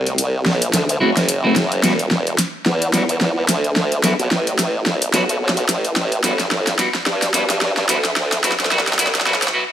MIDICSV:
0, 0, Header, 1, 4, 480
1, 0, Start_track
1, 0, Tempo, 550459
1, 1599, Time_signature, 4, 2, 24, 8
1, 8476, End_track
2, 0, Start_track
2, 0, Title_t, "Clean electric guitar"
2, 0, Program_c, 0, 27
2, 875, Note_on_c, 0, 64, 81
2, 880, Note_on_c, 0, 66, 103
2, 883, Note_on_c, 0, 60, 70
2, 889, Note_on_c, 0, 57, 77
2, 957, Note_off_c, 0, 57, 0
2, 957, Note_off_c, 0, 60, 0
2, 957, Note_off_c, 0, 64, 0
2, 957, Note_off_c, 0, 66, 0
2, 1253, Note_on_c, 0, 64, 69
2, 1256, Note_on_c, 0, 66, 76
2, 1260, Note_on_c, 0, 60, 70
2, 1266, Note_on_c, 0, 57, 69
2, 1349, Note_off_c, 0, 57, 0
2, 1349, Note_off_c, 0, 60, 0
2, 1350, Note_off_c, 0, 64, 0
2, 1350, Note_off_c, 0, 66, 0
2, 1593, Note_on_c, 0, 59, 63
2, 1599, Note_on_c, 0, 55, 70
2, 1605, Note_on_c, 0, 66, 69
2, 1608, Note_on_c, 0, 64, 54
2, 1676, Note_off_c, 0, 59, 0
2, 1677, Note_off_c, 0, 55, 0
2, 1677, Note_off_c, 0, 64, 0
2, 1677, Note_off_c, 0, 66, 0
2, 2553, Note_on_c, 0, 59, 62
2, 2558, Note_on_c, 0, 55, 67
2, 2563, Note_on_c, 0, 66, 67
2, 2568, Note_on_c, 0, 64, 56
2, 2636, Note_off_c, 0, 55, 0
2, 2636, Note_off_c, 0, 59, 0
2, 2636, Note_off_c, 0, 64, 0
2, 2636, Note_off_c, 0, 66, 0
2, 3516, Note_on_c, 0, 54, 66
2, 3520, Note_on_c, 0, 59, 67
2, 3522, Note_on_c, 0, 66, 70
2, 3526, Note_on_c, 0, 64, 59
2, 3596, Note_off_c, 0, 66, 0
2, 3597, Note_off_c, 0, 54, 0
2, 3597, Note_off_c, 0, 59, 0
2, 3597, Note_off_c, 0, 64, 0
2, 4474, Note_on_c, 0, 54, 75
2, 4478, Note_on_c, 0, 59, 64
2, 4484, Note_on_c, 0, 66, 82
2, 4488, Note_on_c, 0, 64, 56
2, 4556, Note_off_c, 0, 54, 0
2, 4556, Note_off_c, 0, 59, 0
2, 4556, Note_off_c, 0, 64, 0
2, 4556, Note_off_c, 0, 66, 0
2, 5433, Note_on_c, 0, 59, 67
2, 5437, Note_on_c, 0, 55, 64
2, 5441, Note_on_c, 0, 66, 71
2, 5445, Note_on_c, 0, 64, 65
2, 5516, Note_off_c, 0, 55, 0
2, 5516, Note_off_c, 0, 59, 0
2, 5516, Note_off_c, 0, 64, 0
2, 5516, Note_off_c, 0, 66, 0
2, 5913, Note_on_c, 0, 59, 68
2, 5917, Note_on_c, 0, 55, 78
2, 5922, Note_on_c, 0, 66, 82
2, 5927, Note_on_c, 0, 64, 59
2, 5996, Note_off_c, 0, 55, 0
2, 5996, Note_off_c, 0, 59, 0
2, 5996, Note_off_c, 0, 64, 0
2, 5996, Note_off_c, 0, 66, 0
2, 6393, Note_on_c, 0, 59, 68
2, 6396, Note_on_c, 0, 55, 73
2, 6401, Note_on_c, 0, 66, 75
2, 6406, Note_on_c, 0, 64, 64
2, 6475, Note_off_c, 0, 55, 0
2, 6476, Note_off_c, 0, 59, 0
2, 6476, Note_off_c, 0, 64, 0
2, 6476, Note_off_c, 0, 66, 0
2, 6874, Note_on_c, 0, 59, 70
2, 6879, Note_on_c, 0, 55, 80
2, 6882, Note_on_c, 0, 66, 76
2, 6885, Note_on_c, 0, 64, 68
2, 6956, Note_off_c, 0, 55, 0
2, 6956, Note_off_c, 0, 59, 0
2, 6956, Note_off_c, 0, 64, 0
2, 6956, Note_off_c, 0, 66, 0
2, 7354, Note_on_c, 0, 54, 79
2, 7357, Note_on_c, 0, 59, 65
2, 7360, Note_on_c, 0, 66, 75
2, 7364, Note_on_c, 0, 64, 66
2, 7436, Note_off_c, 0, 54, 0
2, 7436, Note_off_c, 0, 59, 0
2, 7436, Note_off_c, 0, 64, 0
2, 7436, Note_off_c, 0, 66, 0
2, 7593, Note_on_c, 0, 64, 72
2, 7597, Note_on_c, 0, 66, 85
2, 7601, Note_on_c, 0, 59, 67
2, 7606, Note_on_c, 0, 54, 71
2, 7676, Note_off_c, 0, 54, 0
2, 7676, Note_off_c, 0, 59, 0
2, 7676, Note_off_c, 0, 64, 0
2, 7676, Note_off_c, 0, 66, 0
2, 7833, Note_on_c, 0, 54, 82
2, 7838, Note_on_c, 0, 59, 67
2, 7841, Note_on_c, 0, 66, 80
2, 7845, Note_on_c, 0, 64, 70
2, 7915, Note_off_c, 0, 54, 0
2, 7915, Note_off_c, 0, 64, 0
2, 7916, Note_off_c, 0, 59, 0
2, 7916, Note_off_c, 0, 66, 0
2, 8074, Note_on_c, 0, 64, 72
2, 8079, Note_on_c, 0, 66, 85
2, 8084, Note_on_c, 0, 59, 72
2, 8088, Note_on_c, 0, 54, 71
2, 8156, Note_off_c, 0, 66, 0
2, 8157, Note_off_c, 0, 54, 0
2, 8157, Note_off_c, 0, 59, 0
2, 8157, Note_off_c, 0, 64, 0
2, 8315, Note_on_c, 0, 54, 77
2, 8319, Note_on_c, 0, 59, 72
2, 8322, Note_on_c, 0, 66, 80
2, 8327, Note_on_c, 0, 64, 64
2, 8396, Note_off_c, 0, 59, 0
2, 8396, Note_off_c, 0, 64, 0
2, 8396, Note_off_c, 0, 66, 0
2, 8397, Note_off_c, 0, 54, 0
2, 8476, End_track
3, 0, Start_track
3, 0, Title_t, "Wobble bass"
3, 0, Program_c, 1, 39
3, 0, Note_on_c, 1, 36, 97
3, 416, Note_off_c, 1, 36, 0
3, 416, Note_on_c, 1, 35, 97
3, 623, Note_off_c, 1, 35, 0
3, 638, Note_on_c, 1, 38, 95
3, 862, Note_off_c, 1, 38, 0
3, 878, Note_on_c, 1, 30, 97
3, 1582, Note_off_c, 1, 30, 0
3, 1597, Note_on_c, 1, 28, 96
3, 2061, Note_off_c, 1, 28, 0
3, 2318, Note_on_c, 1, 40, 91
3, 2542, Note_off_c, 1, 40, 0
3, 2556, Note_on_c, 1, 40, 99
3, 3021, Note_off_c, 1, 40, 0
3, 3036, Note_on_c, 1, 38, 95
3, 3501, Note_off_c, 1, 38, 0
3, 3515, Note_on_c, 1, 38, 96
3, 3632, Note_off_c, 1, 38, 0
3, 3653, Note_on_c, 1, 35, 97
3, 3741, Note_off_c, 1, 35, 0
3, 3756, Note_on_c, 1, 33, 98
3, 4461, Note_off_c, 1, 33, 0
3, 4476, Note_on_c, 1, 35, 96
3, 4941, Note_off_c, 1, 35, 0
3, 4956, Note_on_c, 1, 33, 100
3, 5421, Note_off_c, 1, 33, 0
3, 5437, Note_on_c, 1, 31, 96
3, 5901, Note_off_c, 1, 31, 0
3, 6158, Note_on_c, 1, 43, 96
3, 6382, Note_off_c, 1, 43, 0
3, 6399, Note_on_c, 1, 43, 99
3, 6863, Note_off_c, 1, 43, 0
3, 6878, Note_on_c, 1, 38, 99
3, 7342, Note_off_c, 1, 38, 0
3, 7359, Note_on_c, 1, 30, 102
3, 7474, Note_off_c, 1, 30, 0
3, 7496, Note_on_c, 1, 38, 99
3, 7582, Note_off_c, 1, 38, 0
3, 7598, Note_on_c, 1, 36, 100
3, 8095, Note_off_c, 1, 36, 0
3, 8095, Note_on_c, 1, 35, 100
3, 8302, Note_off_c, 1, 35, 0
3, 8476, End_track
4, 0, Start_track
4, 0, Title_t, "Drums"
4, 57, Note_on_c, 9, 42, 35
4, 144, Note_off_c, 9, 42, 0
4, 159, Note_on_c, 9, 42, 76
4, 247, Note_off_c, 9, 42, 0
4, 400, Note_on_c, 9, 38, 66
4, 487, Note_off_c, 9, 38, 0
4, 539, Note_on_c, 9, 42, 49
4, 626, Note_off_c, 9, 42, 0
4, 641, Note_on_c, 9, 38, 67
4, 641, Note_on_c, 9, 42, 75
4, 728, Note_off_c, 9, 38, 0
4, 728, Note_off_c, 9, 42, 0
4, 779, Note_on_c, 9, 42, 50
4, 866, Note_off_c, 9, 42, 0
4, 1019, Note_on_c, 9, 38, 60
4, 1019, Note_on_c, 9, 42, 36
4, 1106, Note_off_c, 9, 38, 0
4, 1106, Note_off_c, 9, 42, 0
4, 1121, Note_on_c, 9, 42, 77
4, 1208, Note_off_c, 9, 42, 0
4, 1361, Note_on_c, 9, 38, 70
4, 1361, Note_on_c, 9, 42, 36
4, 1448, Note_off_c, 9, 38, 0
4, 1448, Note_off_c, 9, 42, 0
4, 1498, Note_on_c, 9, 42, 35
4, 1585, Note_off_c, 9, 42, 0
4, 1600, Note_on_c, 9, 38, 73
4, 1600, Note_on_c, 9, 42, 72
4, 1688, Note_off_c, 9, 38, 0
4, 1688, Note_off_c, 9, 42, 0
4, 1738, Note_on_c, 9, 42, 33
4, 1825, Note_off_c, 9, 42, 0
4, 1841, Note_on_c, 9, 38, 71
4, 1928, Note_off_c, 9, 38, 0
4, 1978, Note_on_c, 9, 42, 34
4, 2065, Note_off_c, 9, 42, 0
4, 2080, Note_on_c, 9, 38, 75
4, 2080, Note_on_c, 9, 42, 74
4, 2167, Note_off_c, 9, 38, 0
4, 2167, Note_off_c, 9, 42, 0
4, 2319, Note_on_c, 9, 38, 73
4, 2406, Note_off_c, 9, 38, 0
4, 2457, Note_on_c, 9, 42, 48
4, 2545, Note_off_c, 9, 42, 0
4, 2560, Note_on_c, 9, 38, 76
4, 2560, Note_on_c, 9, 42, 72
4, 2647, Note_off_c, 9, 38, 0
4, 2647, Note_off_c, 9, 42, 0
4, 2696, Note_on_c, 9, 42, 50
4, 2784, Note_off_c, 9, 42, 0
4, 2799, Note_on_c, 9, 38, 79
4, 2886, Note_off_c, 9, 38, 0
4, 3040, Note_on_c, 9, 38, 80
4, 3040, Note_on_c, 9, 42, 75
4, 3127, Note_off_c, 9, 38, 0
4, 3127, Note_off_c, 9, 42, 0
4, 3177, Note_on_c, 9, 42, 34
4, 3264, Note_off_c, 9, 42, 0
4, 3281, Note_on_c, 9, 38, 80
4, 3368, Note_off_c, 9, 38, 0
4, 3417, Note_on_c, 9, 42, 34
4, 3504, Note_off_c, 9, 42, 0
4, 3520, Note_on_c, 9, 38, 79
4, 3520, Note_on_c, 9, 42, 75
4, 3607, Note_off_c, 9, 38, 0
4, 3607, Note_off_c, 9, 42, 0
4, 3658, Note_on_c, 9, 42, 33
4, 3745, Note_off_c, 9, 42, 0
4, 3762, Note_on_c, 9, 38, 81
4, 3849, Note_off_c, 9, 38, 0
4, 3899, Note_on_c, 9, 42, 35
4, 3986, Note_off_c, 9, 42, 0
4, 4001, Note_on_c, 9, 38, 88
4, 4001, Note_on_c, 9, 42, 76
4, 4088, Note_off_c, 9, 38, 0
4, 4088, Note_off_c, 9, 42, 0
4, 4239, Note_on_c, 9, 38, 84
4, 4326, Note_off_c, 9, 38, 0
4, 4375, Note_on_c, 9, 42, 48
4, 4463, Note_off_c, 9, 42, 0
4, 4479, Note_on_c, 9, 38, 83
4, 4479, Note_on_c, 9, 42, 75
4, 4566, Note_off_c, 9, 38, 0
4, 4566, Note_off_c, 9, 42, 0
4, 4616, Note_on_c, 9, 42, 50
4, 4703, Note_off_c, 9, 42, 0
4, 4787, Note_on_c, 9, 38, 85
4, 4857, Note_on_c, 9, 42, 34
4, 4875, Note_off_c, 9, 38, 0
4, 4945, Note_off_c, 9, 42, 0
4, 4960, Note_on_c, 9, 38, 89
4, 4960, Note_on_c, 9, 42, 77
4, 5047, Note_off_c, 9, 38, 0
4, 5047, Note_off_c, 9, 42, 0
4, 5097, Note_on_c, 9, 42, 34
4, 5184, Note_off_c, 9, 42, 0
4, 5199, Note_on_c, 9, 38, 89
4, 5286, Note_off_c, 9, 38, 0
4, 5337, Note_on_c, 9, 42, 35
4, 5424, Note_off_c, 9, 42, 0
4, 5440, Note_on_c, 9, 38, 92
4, 5440, Note_on_c, 9, 42, 79
4, 5527, Note_off_c, 9, 38, 0
4, 5527, Note_off_c, 9, 42, 0
4, 5577, Note_on_c, 9, 38, 76
4, 5577, Note_on_c, 9, 42, 35
4, 5664, Note_off_c, 9, 38, 0
4, 5664, Note_off_c, 9, 42, 0
4, 5680, Note_on_c, 9, 38, 89
4, 5767, Note_off_c, 9, 38, 0
4, 5818, Note_on_c, 9, 38, 84
4, 5818, Note_on_c, 9, 42, 36
4, 5905, Note_off_c, 9, 38, 0
4, 5905, Note_off_c, 9, 42, 0
4, 5921, Note_on_c, 9, 38, 96
4, 5921, Note_on_c, 9, 42, 78
4, 6008, Note_off_c, 9, 38, 0
4, 6008, Note_off_c, 9, 42, 0
4, 6057, Note_on_c, 9, 38, 84
4, 6145, Note_off_c, 9, 38, 0
4, 6160, Note_on_c, 9, 38, 96
4, 6248, Note_off_c, 9, 38, 0
4, 6298, Note_on_c, 9, 38, 83
4, 6298, Note_on_c, 9, 42, 51
4, 6386, Note_off_c, 9, 38, 0
4, 6386, Note_off_c, 9, 42, 0
4, 6401, Note_on_c, 9, 38, 94
4, 6401, Note_on_c, 9, 42, 75
4, 6489, Note_off_c, 9, 38, 0
4, 6489, Note_off_c, 9, 42, 0
4, 6539, Note_on_c, 9, 38, 89
4, 6539, Note_on_c, 9, 42, 52
4, 6626, Note_off_c, 9, 38, 0
4, 6626, Note_off_c, 9, 42, 0
4, 6640, Note_on_c, 9, 38, 96
4, 6727, Note_off_c, 9, 38, 0
4, 6778, Note_on_c, 9, 38, 84
4, 6865, Note_off_c, 9, 38, 0
4, 6880, Note_on_c, 9, 38, 98
4, 6880, Note_on_c, 9, 42, 78
4, 6967, Note_off_c, 9, 38, 0
4, 6967, Note_off_c, 9, 42, 0
4, 7018, Note_on_c, 9, 38, 86
4, 7018, Note_on_c, 9, 42, 36
4, 7105, Note_off_c, 9, 38, 0
4, 7105, Note_off_c, 9, 42, 0
4, 7120, Note_on_c, 9, 38, 103
4, 7207, Note_off_c, 9, 38, 0
4, 7258, Note_on_c, 9, 38, 90
4, 7258, Note_on_c, 9, 42, 35
4, 7345, Note_off_c, 9, 38, 0
4, 7345, Note_off_c, 9, 42, 0
4, 7360, Note_on_c, 9, 38, 102
4, 7360, Note_on_c, 9, 42, 80
4, 7428, Note_off_c, 9, 38, 0
4, 7428, Note_on_c, 9, 38, 92
4, 7447, Note_off_c, 9, 42, 0
4, 7498, Note_off_c, 9, 38, 0
4, 7498, Note_on_c, 9, 38, 88
4, 7498, Note_on_c, 9, 42, 37
4, 7548, Note_off_c, 9, 38, 0
4, 7548, Note_on_c, 9, 38, 91
4, 7585, Note_off_c, 9, 42, 0
4, 7600, Note_off_c, 9, 38, 0
4, 7600, Note_on_c, 9, 38, 99
4, 7670, Note_off_c, 9, 38, 0
4, 7670, Note_on_c, 9, 38, 90
4, 7739, Note_off_c, 9, 38, 0
4, 7739, Note_on_c, 9, 38, 92
4, 7739, Note_on_c, 9, 42, 39
4, 7790, Note_off_c, 9, 38, 0
4, 7790, Note_on_c, 9, 38, 94
4, 7826, Note_off_c, 9, 42, 0
4, 7840, Note_off_c, 9, 38, 0
4, 7840, Note_on_c, 9, 38, 108
4, 7840, Note_on_c, 9, 42, 83
4, 7909, Note_off_c, 9, 38, 0
4, 7909, Note_on_c, 9, 38, 93
4, 7927, Note_off_c, 9, 42, 0
4, 7978, Note_off_c, 9, 38, 0
4, 7978, Note_on_c, 9, 38, 90
4, 7978, Note_on_c, 9, 42, 38
4, 8030, Note_off_c, 9, 38, 0
4, 8030, Note_on_c, 9, 38, 94
4, 8065, Note_off_c, 9, 42, 0
4, 8080, Note_off_c, 9, 38, 0
4, 8080, Note_on_c, 9, 38, 102
4, 8149, Note_off_c, 9, 38, 0
4, 8149, Note_on_c, 9, 38, 92
4, 8217, Note_off_c, 9, 38, 0
4, 8217, Note_on_c, 9, 38, 94
4, 8217, Note_on_c, 9, 42, 52
4, 8268, Note_off_c, 9, 38, 0
4, 8268, Note_on_c, 9, 38, 92
4, 8304, Note_off_c, 9, 42, 0
4, 8355, Note_off_c, 9, 38, 0
4, 8476, End_track
0, 0, End_of_file